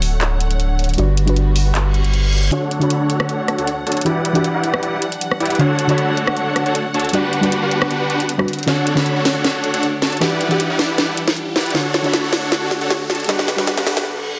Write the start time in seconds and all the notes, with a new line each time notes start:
Already playing: D1 D3 A3 D4 F#4 C#5 F#5
0.02 open hi-hat
0.21 clap, closed hi-hat
0.40 closed hi-hat
0.51 closed hi-hat
0.60 closed hi-hat
0.79 closed hi-hat
0.84 closed hi-hat
0.89 closed hi-hat
0.94 G3, closed hi-hat
0.98 G1 G3 B3 D4 F#4 D5, closed hi-hat
1.17 closed hi-hat
1.25 G3 D4 F#4 B4, closed hi-hat
1.36 closed hi-hat
1.56 open hi-hat
1.75 clap, closed hi-hat, reverse cymbal
1.94 closed hi-hat
2.04 closed hi-hat
2.14 closed hi-hat
2.33 closed hi-hat
2.38 closed hi-hat
2.43 closed hi-hat
2.47 D3, closed hi-hat
2.51 D1 D3 A3 D4 F#4 A4 C#5 F#5, closed hi-hat, riser
2.71 closed hi-hat
2.79 D1 D3 D4 F#4 A4 C#5 B5, closed hi-hat
2.90 closed hi-hat
3.00 D1 D4 F#4 A4 C#5 F#5
3.10 closed hi-hat
3.20 cross-stick
3.29 closed hi-hat
3.48 cross-stick, closed hi-hat
3.58 D2 D4 F#4 A4 C#5 F#5, closed hi-hat
3.67 closed hi-hat
3.86 D1 D4 F#4 A4 C#5 A5, closed hi-hat
3.92 closed hi-hat
3.97 closed hi-hat
4.01 E3 D4, closed hi-hat
4.06 E1 E3 G3 D4 E4 F#4 G4 B4 D5 F#5, closed hi-hat
4.25 closed hi-hat
4.33 E1 E3 D4 E4 F#4 G4 B4 D5 F#5, closed hi-hat
4.37 G4
4.44 closed hi-hat
4.54 E1 E4 G4 B4 D5 F#5
4.64 closed hi-hat
4.74 cross-stick
4.83 E1 E4 G4 B4 D5 F#5, closed hi-hat
5.02 closed hi-hat
5.12 closed hi-hat
5.21 closed hi-hat
5.31 cross-stick
5.40 E1 E4 G4 B4 D5 F#5, closed hi-hat
5.46 closed hi-hat
5.50 closed hi-hat
5.55 D3, closed hi-hat
5.59 D1 D3 A3 D4 F#4 A4 C#5 F#5, closed hi-hat
5.79 closed hi-hat
5.87 D1 D3 D4 F#4 A4 C#5 B5, closed hi-hat
5.91 C#5
5.98 closed hi-hat
6.08 D1 D4 F#4 A4 C#5 F#5
6.17 closed hi-hat
6.27 cross-stick
6.37 closed hi-hat
6.56 cross-stick, closed hi-hat
6.66 D1 D4 F#4 A4 C#5 F#5, closed hi-hat
6.75 closed hi-hat
6.94 D2 D4 F#4 A4 C#5 A5, closed hi-hat
7.00 closed hi-hat
7.05 closed hi-hat
7.09 G3, closed hi-hat
7.13 G1 D3 G3 B3 D4 F#4 G4 B4 D5 F#5, closed hi-hat
7.33 closed hi-hat
7.41 G1 G3 D4 F#4 G4 B4 F#5, closed hi-hat
7.45 B4
7.52 closed hi-hat
7.62 G1 D4 F#4 G4 B4 F#5
7.71 closed hi-hat
7.82 cross-stick
7.90 G1 D4 F#4 G4 B4 F#5, closed hi-hat
8.10 G1 D4 F#4 G4 B4 F#5, closed hi-hat
8.20 closed hi-hat
8.29 closed hi-hat
8.38 G3 D4 F#4 B4, cross-stick
8.48 closed hi-hat
8.53 closed hi-hat
8.59 closed hi-hat
8.63 D3 D4, closed hi-hat
8.67 D1 A3 D4 F#4 A4 C#5 F#5, snare, closed hi-hat
8.87 closed hi-hat
8.95 D3 D4 F#4 A4 C#5 B5, snare, closed hi-hat
9.06 closed hi-hat
9.16 D1 D4 F#4 A4 C#5 F#5
9.25 snare, open hi-hat
9.44 snare, closed hi-hat
9.64 closed hi-hat
9.74 D2 D4 F#4 A4 C#5 F#5, closed hi-hat
9.83 closed hi-hat
10.02 D2 D4 F#4 A4 C#5 A5, snare, closed hi-hat
10.07 closed hi-hat
10.12 closed hi-hat
10.17 E3 D4, closed hi-hat
10.21 E1 E3 G3 D4 E4 F#4 G4 B4 D5 F#5, snare, closed hi-hat
10.41 closed hi-hat
10.48 E1 E3 D4 E4 F#4 G4 B4 D5 F#5, closed hi-hat
10.60 closed hi-hat
10.70 E1 E4 G4 B4 D5 F#5
10.79 snare, open hi-hat
10.98 E1 E4 G4 B4 D5 F#5, snare, closed hi-hat
11.17 closed hi-hat
11.28 snare, closed hi-hat
11.37 closed hi-hat
11.56 E1 E4 G4 B4 D5 F#5, snare, closed hi-hat
11.61 closed hi-hat
11.66 closed hi-hat
11.70 D3, closed hi-hat
11.75 D1 D3 A3 D4 F#4 A4 C#5 F#5, snare
11.94 snare, closed hi-hat
12.02 D1 D3 D4 F#4 A4 C#5 B5, closed hi-hat
12.06 C#5
12.13 snare, closed hi-hat
12.23 D1 D4 F#4 A4 C#5 F#5
12.33 snare, open hi-hat
12.52 snare, closed hi-hat
12.71 snare, closed hi-hat
12.81 D4 F#4 A4 C#5 F#5, closed hi-hat
12.90 snare, closed hi-hat
13.10 D4 F#4 A4 C#5 A5, snare, closed hi-hat
13.15 closed hi-hat
13.20 closed hi-hat
13.24 G3, closed hi-hat
13.29 D3 G3 B3 D4 F#4 G4 B4 D5 F#5, snare, closed hi-hat
13.39 snare
13.48 snare, closed hi-hat
13.56 G3 D4 F#4 G4 B4 F#5, snare, closed hi-hat
13.67 snare, closed hi-hat
13.77 G1 D4 F#4 G4 B4 F#5, snare
13.87 snare, open hi-hat
13.97 snare
14.06 reverse cymbal